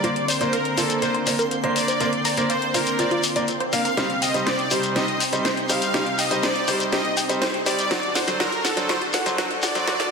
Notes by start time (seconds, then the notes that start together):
Already playing: D3 C5 D5 C6
0.03 A#3 C4 D4 F4 C5, closed hi-hat, shekere
0.16 A#1, closed hi-hat
0.28 C5 D5, open hi-hat, shekere
0.41 A#1 A#3 D4 C5, closed hi-hat, shekere
0.53 A#4, closed hi-hat, shekere
0.65 closed hi-hat
0.78 A#1 A#3 D4 F4 A4 C5, open hi-hat, shekere
0.90 A#1, closed hi-hat, shekere
1.02 A#3 D4 A#4 C5, closed hi-hat, shekere
1.14 F1 C6, closed hi-hat
1.27 A#3 D4 C5, open hi-hat, shekere
1.39 A#1 A#4, closed hi-hat, shekere
1.51 closed hi-hat, shekere
1.64 A#1 A#3 D4 C5 D5, closed hi-hat
1.76 A#1 D5, open hi-hat, shekere
1.88 A#1 C5, closed hi-hat, shekere
2.00 A#3 D4 A#4 C5, closed hi-hat, shekere
2.13 A#1, closed hi-hat
2.25 D5 A#5, open hi-hat, shekere
2.37 A#1 A#3 D4 C5, closed hi-hat, shekere
2.50 C5 F5, closed hi-hat, shekere
2.62 closed hi-hat
2.74 A#1 A#3 D4 F4 A#4 C5, open hi-hat, shekere
2.86 A#1, closed hi-hat, shekere
2.99 A#3 D4 F4 C5 D5, closed hi-hat, shekere
3.11 A#1 F4, closed hi-hat
3.23 open hi-hat, shekere
3.36 A#1 A#3 D4 D5, closed hi-hat, shekere
3.48 closed hi-hat, shekere
3.60 A#1 C5, closed hi-hat
3.73 A#1 A#3 D4 F5, open hi-hat, shekere
3.85 A#1 A#4, closed hi-hat, shekere
3.97 C3 G3 D#4 G4 C5, snare, closed hi-hat, shekere
4.10 C2, closed hi-hat
4.22 D#5 G5, open hi-hat, shekere
4.34 C2 G3 D#4 C5, closed hi-hat, shekere
4.46 C5 D5, snare, closed hi-hat, shekere
4.59 closed hi-hat
4.71 G3 D#4 G4 C5, open hi-hat, shekere
4.83 C2, closed hi-hat, shekere
4.96 G3 D#4 G4 C5 D#5, snare, closed hi-hat, shekere
5.08 A#1, closed hi-hat
5.20 G5, open hi-hat, shekere
5.33 C2 G3 D#4 C5, closed hi-hat, shekere
5.45 C5, snare, closed hi-hat, shekere
5.57 C2, closed hi-hat
5.69 G3 D#4 G4 C5 F5, open hi-hat, shekere
5.82 C2, closed hi-hat, shekere
5.94 G3 D#4 G4 C5, snare, closed hi-hat, shekere
6.06 C2, closed hi-hat
6.18 D#5 G5, open hi-hat, shekere
6.31 C2 G3 D#4 C5, closed hi-hat, shekere
6.43 C5 D5, snare, closed hi-hat, shekere
6.56 closed hi-hat
6.68 C2 G3 D#4 G4 C5, open hi-hat, shekere
6.80 C2, closed hi-hat, shekere
6.92 G3 D#4 G4 C5 D#5, snare, closed hi-hat, shekere
7.05 A#1, closed hi-hat
7.17 G5, open hi-hat, shekere
7.29 C2 G3 D#4 C5, closed hi-hat, shekere
7.41 C5, snare, closed hi-hat, shekere
7.54 C2, closed hi-hat
7.66 C2 G3 D#4 G4 C5 D5, open hi-hat, shekere
7.78 C2, closed hi-hat, shekere
7.91 D3 F#3 D4 F#4 A4 C5, snare, closed hi-hat, shekere
8.03 D2, closed hi-hat
8.15 C5 F#5, snare, open hi-hat, shekere
8.27 D2 F#3 D4 C5, closed hi-hat, shekere
8.40 F#3 D4 F#4 A#4 C5, snare, closed hi-hat, shekere
8.52 closed hi-hat
8.64 D2 A4 F#5, snare, open hi-hat, shekere
8.77 D2 F#3 D4 C5, closed hi-hat, shekere
8.89 F#3 D4 F#4 C5, snare, closed hi-hat, shekere
9.01 C2, closed hi-hat
9.13 F#5, snare, open hi-hat, shekere
9.26 D2 F#3 D4 C5, closed hi-hat, shekere
9.38 F#3 D4 F#4 C5, snare, closed hi-hat, shekere
9.51 D2, closed hi-hat
9.62 D2 D5 F#5, snare, open hi-hat, shekere
9.75 D2 F#3 D4 C5, closed hi-hat, shekere
9.87 F#3 D4 F#4 C5, snare, closed hi-hat, shekere
10.00 D2, snare, closed hi-hat